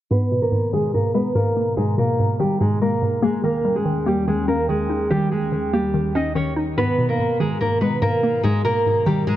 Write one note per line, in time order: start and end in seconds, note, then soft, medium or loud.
0.11 0.50 G#2 medium
0.11 3.41 G#2 medium
0.11 3.41 B2 medium
0.11 9.36 D#3 medium
0.11 0.41 B3 medium
0.11 0.41 B4 loud
0.11 3.41 A#5 medium
0.32 1.36 B2 medium
0.42 0.71 A#3 medium
0.42 0.71 A#4 medium
0.52 0.93 G#2 medium
0.73 1.77 D#3 medium
0.73 0.91 G#3 medium
0.73 0.90 G#4 medium
0.94 1.34 G#2 medium
0.94 1.11 A#3 soft
0.94 1.11 A#4 medium
1.14 2.19 G#3 medium
1.14 1.32 B3 medium
1.14 1.31 B4 medium
1.35 1.76 G#2 medium
1.35 1.75 A#3 medium
1.35 1.75 A#4 medium
1.57 2.61 A#3 medium
1.77 2.18 G#2 loud
1.77 1.94 G#3 medium
1.77 1.94 G#4 medium
1.98 3.02 B2 medium
1.98 2.38 A#3 medium
1.98 2.37 A#4 medium
2.19 2.59 G#2 medium
2.40 3.42 D#3 loud
2.40 2.57 G3 medium
2.40 2.57 G4 medium
2.60 3.01 G#2 medium
2.60 2.78 G#3 medium
2.60 2.77 G#4 medium
2.82 3.44 G#3 medium
2.82 3.21 A#3 medium
2.82 3.21 A#4 medium
3.02 3.44 G#2 medium
3.22 3.40 G#3 medium
3.22 3.44 A#3 medium
3.22 3.40 G#4 medium
3.44 6.74 D#2 medium
3.44 3.84 D#3 medium
3.44 3.75 A#3 medium
3.44 6.74 C#4 medium
3.44 3.74 A#4 medium
3.44 6.74 G5 medium
3.65 4.69 G3 medium
3.75 4.05 G#3 medium
3.75 4.04 G#4 medium
3.85 4.26 D#3 medium
4.06 4.24 G3 medium
4.06 5.10 A#3 loud
4.06 4.24 G4 medium
4.27 4.68 D#3 medium
4.27 4.45 G#3 medium
4.27 4.44 G#4 medium
4.48 4.65 A#3 medium
4.48 5.52 C#4 medium
4.48 4.65 A#4 medium
4.69 5.09 D#3 medium
4.69 5.09 G#3 medium
4.69 5.08 G#4 medium
4.90 5.94 D#4 medium
5.11 5.51 D#3 medium
5.11 5.28 G3 medium
5.11 5.28 G4 loud
5.31 5.71 G#3 medium
5.31 5.71 G#4 medium
5.52 5.93 D#3 medium
5.73 6.13 G3 medium
5.73 6.77 A#3 medium
5.73 6.12 G4 medium
5.94 6.34 D#3 medium
6.15 6.77 C#4 medium
6.15 6.32 D#4 medium
6.15 6.32 D#5 medium
6.35 6.77 D#3 medium
6.35 6.52 C#4 medium
6.35 6.53 C#5 medium
6.56 6.77 D#4 medium
6.77 7.17 G#2 medium
6.77 9.36 G#2 medium
6.77 9.36 B2 medium
6.77 7.08 B3 medium
6.77 7.07 B4 loud
6.77 9.36 A#5 medium
6.98 8.02 B2 medium
7.09 7.38 A#3 medium
7.09 7.38 A#4 medium
7.19 7.60 G#2 medium
7.40 8.44 D#3 medium
7.40 7.57 G#3 medium
7.40 7.57 G#4 medium
7.61 8.01 G#2 medium
7.61 7.78 A#3 medium
7.61 7.78 A#4 medium
7.81 8.86 G#3 medium
7.81 7.99 B3 medium
7.81 7.98 B4 medium
8.02 8.43 G#2 medium
8.02 8.42 A#3 medium
8.02 8.41 A#4 medium
8.23 9.27 A#3 medium
8.43 8.85 G#2 loud
8.43 8.61 G#3 medium
8.43 8.61 G#4 medium
8.64 9.36 B2 medium
8.64 9.04 A#3 medium
8.64 9.04 A#4 medium
8.86 9.26 G#2 medium
9.06 9.36 D#3 loud
9.06 9.24 G3 medium
9.06 9.23 G4 medium
9.27 9.36 G#2 medium
9.27 9.36 G#3 medium
9.27 9.36 G#4 medium